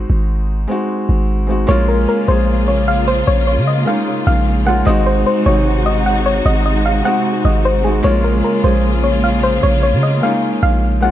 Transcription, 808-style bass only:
0.10 0.67 G#1 loud
1.09 1.66 G#1 loud
1.69 2.07 A#1 loud
2.28 3.24 A#1 loud
3.28 3.59 A#1 loud
3.57 3.86 C#3 loud
4.27 4.84 A#1 loud
4.87 5.25 G#1 loud
5.46 6.42 G#1 loud
6.46 7.03 G#1 loud
7.45 8.02 G#1 loud
8.04 8.43 A#1 loud
8.64 9.59 A#1 loud
9.63 9.95 A#1 loud
9.93 10.22 C#3 loud
10.63 11.11 A#1 loud

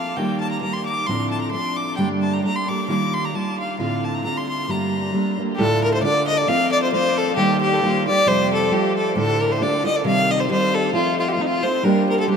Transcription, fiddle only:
0.00 0.18 F5 medium
0.17 0.40 G5 medium
0.41 0.51 A5 medium
0.51 0.61 A#5 medium
0.61 0.75 A#5 medium
0.73 0.85 C6 medium
0.86 1.08 D6 medium
1.06 1.31 C6 medium
1.31 1.41 A5 medium
1.41 1.51 A#5 medium
1.52 1.78 C6 medium
1.76 1.96 D6 medium
1.96 2.08 G5 medium
2.22 2.35 A5 medium
2.34 2.43 A#5 medium
2.44 2.58 A#5 medium
2.56 2.70 C6 medium
2.69 2.88 D6 medium
2.89 3.16 D6 medium
3.14 3.26 C6 medium
3.25 3.36 A#5 medium
3.35 3.59 A5 medium
3.60 3.78 F5 medium
3.79 4.06 F5 medium
4.04 4.16 A5 medium
4.15 4.24 A#5 medium
4.25 4.39 A#5 medium
4.37 4.49 C6 medium
4.50 4.72 C6 medium
4.70 5.39 A#5 medium
5.55 5.61 G4 medium
5.59 5.83 A4 loud
5.84 5.93 A#4 medium
5.94 6.02 C5 medium
6.03 6.26 D5 loud
6.28 6.39 D#5 loud
6.38 6.49 D5 medium
6.48 6.72 F5 loud
6.72 6.82 D5 loud
6.83 6.92 C5 medium
6.93 7.19 C5 loud
7.17 7.36 A4 loud
7.36 7.59 G4 loud
7.61 7.74 G4 loud
7.73 7.88 G4 medium
7.73 7.77 A4 medium
7.87 7.92 F4 medium
7.87 8.06 G4 medium
8.08 8.29 D5 loud
8.28 8.52 C5 loud
8.53 8.74 A4 medium
8.73 8.96 G4 medium
8.97 9.15 A4 medium
9.17 9.43 A4 loud
9.42 9.53 A#4 medium
9.52 9.64 C5 medium
9.63 9.86 D5 loud
9.87 9.97 D#5 loud
9.96 10.05 D5 medium
10.06 10.32 F5 loud
10.31 10.42 D#5 medium
10.40 10.50 C5 medium
10.51 10.76 C5 loud
10.75 10.94 A4 loud
10.94 11.17 F4 loud
11.20 11.30 F4 medium
11.29 11.34 G4 medium
11.33 11.43 F4 medium
11.42 11.49 D#4 medium
11.47 11.65 F4 loud
11.63 11.86 C5 medium
11.84 12.08 A#4 medium
12.09 12.18 A#4 medium
12.20 12.28 A4 medium
12.30 12.37 G4 medium

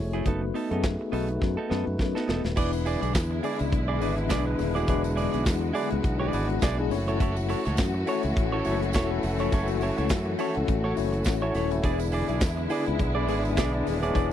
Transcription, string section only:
2.57 6.88 D3 medium
2.57 6.88 G#3 medium
2.57 4.86 E4 medium
4.89 11.80 F#4 medium
6.92 11.80 E3 medium
6.92 11.80 A3 medium
11.83 14.33 D3 medium
11.83 14.33 G#3 medium
11.83 14.13 E4 loud
14.15 14.33 D4 medium

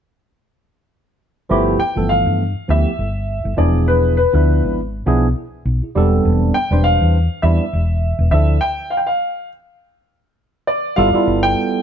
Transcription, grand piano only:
1.80 2.11 G5 medium
2.09 2.71 F5 medium
2.70 3.61 E5 medium
3.58 3.89 D5 medium
3.88 4.16 B4 medium
4.17 4.73 B4 medium
6.54 6.85 G5 medium
6.84 7.45 F5 medium
7.42 8.30 E5 medium
8.31 8.59 E5 medium
8.61 8.92 G5 medium
8.90 8.98 F5 medium
8.97 9.06 G5 medium
9.07 9.47 F5 medium
10.67 10.98 D5 medium
10.96 11.44 F5 medium
11.43 11.82 G5 medium

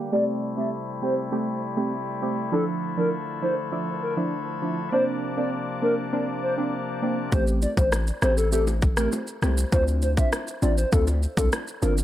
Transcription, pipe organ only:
0.00 2.48 G3 medium
0.12 2.50 C3 medium
0.12 4.88 A3 medium
0.12 4.88 E4 medium
2.52 4.90 D3 medium
2.52 7.28 F3 medium
4.92 7.30 C3 medium
4.92 7.30 A#3 medium
4.92 7.30 D4 medium

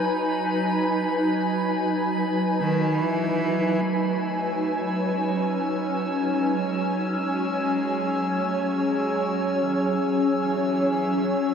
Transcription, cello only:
2.61 3.03 D#3 medium
3.01 3.83 E3 medium
3.81 5.08 A3 loud
5.06 5.49 G#3 medium
5.48 6.33 F#3 medium
6.31 6.95 G#3 medium
6.94 7.17 F#3 medium
7.15 8.36 G#3 medium
8.35 8.78 A3 medium
8.76 9.63 G#3 medium
9.61 9.67 E3 medium
9.66 9.75 D#3 medium
9.73 10.21 E3 medium
10.42 11.26 E3 medium
11.24 11.54 F#3 medium

